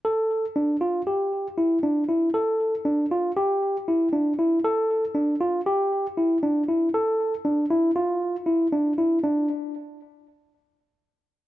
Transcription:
\new Staff \with { instrumentName = "Tine electric piano" } { \time 9/8 \key d \minor \tempo 4. = 78 a'4 d'8 f'8 g'4 e'8 d'8 e'8 | a'4 d'8 f'8 g'4 e'8 d'8 e'8 | a'4 d'8 f'8 g'4 e'8 d'8 e'8 | a'4 d'8 e'8 f'4 e'8 d'8 e'8 |
d'8 r1 | }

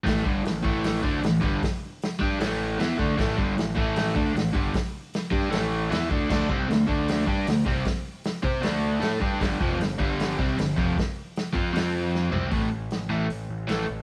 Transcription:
<<
  \new Staff \with { instrumentName = "Overdriven electric guitar" } { \clef bass \time 4/4 \key a \minor \tempo 4 = 154 <a, e a>8 <g, d g>8 <a, e>8 <a, e a>4 <d a d'>8 <a, e>8 <g, d g>8 | r4. <g d' g'>8 <a, e a>4 <e b e'>8 <d a d'>8 | <a, e a>8 <g, d g>8 <a, e>8 <a, e a>4 <d a d'>8 <a, e>8 <g, d g>8 | r4. <g d' g'>8 <a, e a>4 <e b e'>8 <d a d'>8 |
<d a d'>8 <c g c'>8 <d a>8 <d a d'>4 <g d' g'>8 <d a>8 <c g c'>8 | r4. <c' g' c''>8 <d a d'>4 <a e' a'>8 <g d' g'>8 | <g, d g>8 <f, c f>8 <g, d>8 <g, d g>4 <c g c'>8 <g, d>8 <f, c f>8 | r4. <f c' f'>8 <f c' f'>4. <c g c'>8 |
<a, e a>8 r4 <a, e a>8 r4 <a, e a>8 r8 | }
  \new Staff \with { instrumentName = "Picked electric bass" } { \clef bass \time 4/4 \key a \minor a,,8 g,,8 a,,8 a,,4 d,8 a,,8 g,,8 | r4. g,8 a,,4 e,8 d,8 | a,,8 g,,8 a,,8 a,,4 d,8 a,,8 g,,8 | r4. g,8 a,,4 e,8 d,8 |
d,8 c,8 d,8 d,4 g,8 d,8 c,8 | r4. c8 d,4 a,8 g,8 | g,,8 f,,8 g,,8 g,,4 c,8 g,,8 f,,8 | r4. f,8 f,4. c,8 |
a,,4 a,,4 a,,8 a,,8 a,,8 a,,8 | }
  \new DrumStaff \with { instrumentName = "Drums" } \drummode { \time 4/4 <hho bd sn>8 bd8 <hho sn>8 bd8 <hho sn>8 bd8 <hho sn>8 bd8 | <hho bd sn>4 <hho sn>8 bd8 <hho sn>4 <hho sn>8 bd8 | <hho bd sn>8 bd8 <hho sn>8 bd8 <hho sn>8 bd8 <hho sn>8 bd8 | <hho bd sn>4 <hho sn>8 bd8 <hho sn>4 <hho sn>8 bd8 |
<cymc bd sn>8 bd8 <hho sn>8 bd8 <hho sn>8 bd8 <hho sn>8 bd8 | <hho bd sn>4 <hho sn>8 bd8 <hho sn>4 <hho sn>8 bd8 | <hho bd sn>8 bd8 <hho sn>8 bd8 <hho sn>8 bd8 <hho sn>8 bd8 | <hho bd sn>4 <hho sn>8 bd8 <hho sn>4 sn8 tomfh8 |
<hho bd>4 <hho sn>4 hho4 <hho sn>4 | }
>>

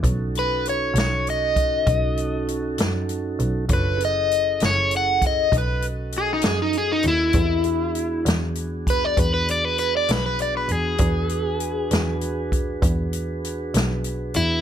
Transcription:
<<
  \new Staff \with { instrumentName = "Overdriven electric guitar" } { \time 12/8 \key b \mixolydian \tempo 4. = 66 r8 b'8 cis''8 cis''8 dis''2 r2 | b'8 dis''4 cis''8 fis''8 dis''8 b'8 r8 gis'16 dis'16 gis'16 dis'16 gis'16 dis'16 e'8~ | e'4. r4 b'16 d''16 b'16 b'16 d''16 b'16 b'16 d''16 b'16 b'16 d''16 b'16 gis'8~ | gis'2~ gis'8 r2. e'8 | }
  \new Staff \with { instrumentName = "Tonewheel organ" } { \time 12/8 \key b \mixolydian <cis' dis' fis' a'>1. | <d' eis' a' cis''>8 <cis' e' gis' a'>2~ <cis' e' gis' a'>8 <cis' fis' a' dis''>2. | <c' g' a' dis''>8 <b d' fis' gis'>1~ <b d' fis' gis'>4. | <d' fis' gis' b'>1. | }
  \new Staff \with { instrumentName = "Double bass" } { \clef bass \time 12/8 \key b \mixolydian b,,4. b,,4. b,,4. fis,4 b,,8 | fis,,4. fis,,4. b,,4. fis,4 dis,8 | e,4. e,4. e,4. b,,4 e,8 | e,4. e,4. e,4. b,,4 e,8 | }
  \new DrumStaff \with { instrumentName = "Drums" } \drummode { \time 12/8 <hh bd>8 hh8 hh8 <hh sn>8 hh8 <hh bd>8 <hh bd>8 hh8 hh8 <hh sn>8 hh8 hh8 | <hh bd>8 hh8 hh8 <hh sn>8 hh8 <hh bd>8 <hh bd>8 hh8 hh8 <hh sn>8 hh8 hh8 | <hh bd>8 hh8 hh8 <hh sn>8 hh8 <hh bd>8 <hh bd>8 hh8 hh8 <hh sn>8 hh8 hh8 | <hh bd>8 hh8 hh8 <hh sn>8 hh8 <hh bd>8 <hh bd>8 hh8 hh8 <hh sn>8 hh8 hh8 | }
>>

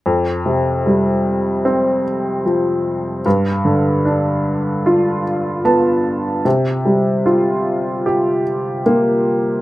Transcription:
\new Staff \with { instrumentName = "Upright piano" } { \clef bass \time 4/4 \key f \major \tempo 4 = 75 f,8 c8 g4 c'4 f4 | g,8 d8 d'4 f'4 <b a''>4 | c8 g8 f'4 g'4 bes4 | }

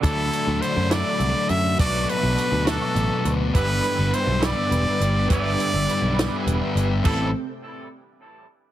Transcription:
<<
  \new Staff \with { instrumentName = "String machine" } { \time 6/8 \key d \mixolydian \tempo 4. = 69 << { <fis'' e'''>2. | <a'' d'''>2. | <g'' e'''>2.~ | <g'' e'''>2. |
<c' a' g''>8 r2 r8 | } \\ { d''2. | b'2.~ | b'2.~ | b'2. |
r2. | } >> }
  \new Staff \with { instrumentName = "Trumpet" } { \time 6/8 \key d \mixolydian a'4 c''8 d''4 e''8 | d''8 b'4 a'4 r8 | b'4 c''8 d''4. | d''2 r4 |
a'8 r2 r8 | }
  \new Staff \with { instrumentName = "Clean electric guitar" } { \clef bass \time 6/8 \key d \mixolydian <d fis a d' e'>4. <d fis a d' e'>4. | <b, fis a d' fis'>4. <b, fis a d' fis'>4. | <g, d e g b e'>4. <g, d e g b e'>4. | <g, d e g b e'>4. <g, d e g b e'>4. |
<a, e g c' e'>8 r2 r8 | }
  \new Staff \with { instrumentName = "Distorted electric guitar" } { \clef bass \time 6/8 \key d \mixolydian <d fis a d'>2. | <b, fis b d'>2. | <g, d g b d'>2. | <g, d g b d'>2. |
<a, e a c' e'>8 r2 r8 | }
  \new Staff \with { instrumentName = "Picked electric bass" } { \clef bass \time 6/8 \key d \mixolydian d,8 r16 d,16 r16 fis,8 r16 c,16 r16 fis,8 | b,,8 r16 b,,16 r16 d,8 r16 a,,16 r16 d,8 | g,,8 r16 g,,16 r16 b,,8 r16 e,,16 r16 g,,8 | g,,8 r16 g,,16 r16 b,,8 r16 e,,16 r16 g,,8 |
a,,8 r2 r8 | }
  \new DrumStaff \with { instrumentName = "Drums" } \drummode { \time 6/8 <hh bd>8 hh8 hh8 <hh sn>8 hh8 hh8 | <hh bd>8 hh8 hh8 <hh sn>8 hh8 hh8 | <hh bd>8 hh8 hh8 <hh sn>8 hh8 hh8 | <hh bd>8 hh8 hh8 <hh sn>8 hh8 hh8 |
<cymc bd>4. r4. | }
>>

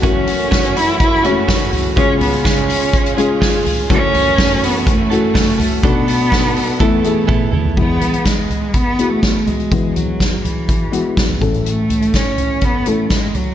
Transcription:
<<
  \new Staff \with { instrumentName = "Clean electric guitar" } { \time 4/4 \key e \mixolydian \tempo 4 = 124 <fis, cis e a cis' fis'>8 <e a cis' fis'>8 <fis, cis e a cis' fis'>8 <e a cis' fis'>4 <e a cis' fis'>8 <fis, cis e a cis' fis'>8 <e a cis' fis'>8 | <cis gis cis' eis' gis'>8 <cis' eis' gis'>8 <cis gis cis' eis' gis'>8 <cis' eis' gis'>4 <cis' eis' gis'>8 <cis gis cis' eis' gis'>8 <cis' eis' gis'>8 | <fis, cis e a cis' a'>8 <e a cis' a'>8 <fis, cis e a cis' a'>8 <e a cis' a'>4 <e a cis' a'>8 <fis, cis e a cis' a'>8 <e a cis' a'>8 | <b, fis a d' a'>8 <a d' a'>8 <b, fis a d' a'>8 <a d' a'>8 <e b e' a'>8 <b e' a'>8 <e b e' a'>8 <b e' a'>8 |
r1 | r1 | r1 | }
  \new Staff \with { instrumentName = "Felt piano" } { \time 4/4 \key e \mixolydian <a cis' e' fis'>4. r4 <gis a cis' e' fis'>4. | <gis cis' eis' gis'>4. r4 <gis cis' eis' gis'>4. | <a cis' e' fis'>4. r4 <a cis' e' fis'>4. | <a b d' fis'>4. r8 <a b e' a'>8 <a b e' gis'>4. |
<gis b e' gis'>4. r4 <b e' fis' gis'>4. | <gis b e' b'>4. r4 <gis b e' fis'>4 <a cis' e' a'>8~ | <a cis' e' a'>4 r4. <a cis' e' a'>4. | }
  \new Staff \with { instrumentName = "Felt piano" } { \clef bass \time 4/4 \key e \mixolydian <fis,, fis,>1 | <cis, cis>1 | <fis,, fis,>1 | <b,, b,>2 <e, e>2 |
<e, e>1 | <e, e>2.~ <e, e>8 <a,, a,>8~ | <a,, a,>2.~ <a,, a,>8 r8 | }
  \new Staff \with { instrumentName = "Cello" } { \time 4/4 \key e \mixolydian cis'4. e'8 e'8 cis'4 r8 | cis'8 b8 cis'2 r4 | cis'4. b8 a8 a4. | b2 a4. r8 |
b4 gis4 b8. a8. gis8~ | gis8 fis4 e2 r8 | a4 cis'4 b8 a8 gis8 fis8 | }
  \new Staff \with { instrumentName = "String section" } { \time 4/4 \key e \mixolydian << { fis'1 | eis'1 | fis'1 | d'2 e'2 |
r1 | r1 | r1 | } \\ { <e a>1 | <cis gis>1 | <e a>1 | <b, a>1 |
r1 | r1 | r1 | } >> }
  \new DrumStaff \with { instrumentName = "Drums" } \drummode { \time 4/4 <hho hhp bd>8 <hho hhp>16 hho16 <hho hhp bd sn>16 hhp16 <hho hhp>8 <hho hhp bd>8 <hho hhp>8 <hho hhp bd sn>8 <hho hhp tomfh>8 | <hho hhp bd>8 <hho hhp tomfh>16 hho16 <hho hhp bd sn>16 hhp16 <hho hhp>16 hho16 <hho hhp bd>16 hhp16 <hho hhp>8 <hho hhp bd sn>8 <hho hhp tomfh>8 | <hho hhp bd>8 <hho hhp tomfh>8 <hho hhp bd sn>8 <hho hhp>8 <hho hhp bd>8 <hho hhp>8 <hho hhp bd sn>8 <hho hhp tomfh>8 | <hho hhp bd>8 <hho hhp>8 <hho hhp bd sn>8 <hho hhp>8 <hho hhp bd>8 <hho hhp>8 <bd tommh>8 toml16 tomfh16 |
<cymc bd>8 <hh tomfh>16 hh16 <hh bd sn>8 <hh tomfh>8 <hh bd>8 hh8 <hh bd sn>8 <hh tomfh>16 hh16 | <hh bd>8 <hh tomfh>8 <hh bd sn>8 <hh tomfh>8 <hh bd>8 hh8 <hh bd sn>16 tomfh16 <hh bd tomfh>16 hh16 | hh8 <hh tomfh>16 hh16 <hh bd sn>8 <hh tomfh>8 <hh bd>8 hh8 <hh bd sn>8 <hh tomfh>8 | }
>>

